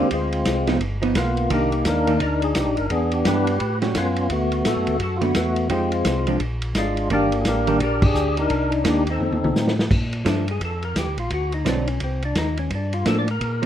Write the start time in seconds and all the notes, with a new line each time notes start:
Already playing: G4
0.11 D2 G#3 C4 F4, kick, ride
0.33 ride
0.45 C2, kick, snare, hi-hat pedal, ride
0.67 F3 B3 D#4, snare, ride
0.80 G1, kick, ride
1.02 F3 B3 D#4, ride
1.15 B1 A#3 B3 F4, kick, snare, hi-hat pedal, ride
1.37 ride
1.50 C2 D#3 A#3 D4 D#4 G4, kick, ride
1.72 ride
1.85 D#2 D4 D#4 A#4, kick, snare, hi-hat pedal, ride
2.07 D#3 A#3 D4, ride
2.20 D2 D4 D#4 A#4, kick, ride
2.42 G#4, ride
2.55 C2 G4, kick, snare, hi-hat pedal, ride
2.66 A#1
2.77 G1 A#4, ride
2.90 E2 B3 D4 G#4, kick, ride
3.12 G4, ride
3.25 G2 E3 B3 D4 G4 B4, kick, snare, hi-hat pedal, ride
3.47 ride
3.60 A2, kick, ride
3.82 G3 C#4 F#4, snare, ride
3.95 F#2 B3 C#4 F4, kick, snare, hi-hat pedal, ride
4.16 ride
4.30 D2 A3 B3 F#4, kick, ride
4.52 ride
4.65 A2 F#4 A4, kick, snare, hi-hat pedal, ride
4.76 F#2
4.87 D2, ride
4.99 F#2 A4, kick, ride
5.03 F#4
5.17 F4
5.21 D3 A3 B3 F#4, ride
5.35 E2 A3 B3 F#4, kick, snare, hi-hat pedal, ride
5.56 ride
5.70 F2 F3 G#3 C4 D#4 F4 G4, kick, ride
5.92 ride
6.05 C2, kick, snare, hi-hat pedal, ride
6.27 F3 G#3 D4, ride
6.40 A#1, kick, ride
6.62 ride
6.75 G#1 G#3 D4 F4, kick, snare, hi-hat pedal, ride
6.97 ride
7.10 G1 D#3 G3 A#3 D4, kick, ride
7.15 G4
7.32 ride
7.41 A1 G#4, kick, snare, hi-hat pedal, ride
7.48 D4 G4 A#4
7.67 D#3 G3 A#3 D4, ride
7.80 A#1 D4 G4, kick, ride
7.84 A#4
8.02 D4 G#4, kick, crash
8.14 D2, hi-hat pedal
8.37 D4 D#4 A#4, ride
8.50 C2, kick, ride
8.72 ride
8.84 D#2 D#3 A#3 D4, kick, snare, hi-hat pedal, ride
8.89 G4
9.07 D#4, ride
9.11 C4 A4
9.19 F2, high tom
9.31 D#2, high tom
9.43 C2, high tom
9.55 A2, snare, hi-hat pedal
9.68 snare
9.79 snare
9.90 A#2, kick, crash
10.13 ride
10.25 G2 F3 A3 D4, kick, snare, hi-hat pedal, ride
10.48 G#4, ride
10.60 F2, kick, ride
10.65 A4
10.83 A#4, ride
10.96 D#2 G4, kick, snare, hi-hat pedal, ride
11.06 D2
11.18 A#1 F4, ride
11.30 D2 F#4, kick, ride
11.52 D#4, ride
11.65 B1 D3 F#3 C4 D#4, kick, snare, hi-hat pedal, ride
11.69 D4
11.87 C#4, ride
12.00 C2 C4, kick, ride
12.22 D4, ride
12.35 D#2 D#4, kick, snare, hi-hat pedal, ride
12.57 C#4, ride
12.70 G2, kick, ride
12.75 D4
12.93 F4, ride
13.05 A2 F3 A#3 D4 A4, kick, snare, hi-hat pedal, ride
13.18 D5
13.28 A#4, ride
13.41 A#2, kick, ride
13.62 F3 A#3, ride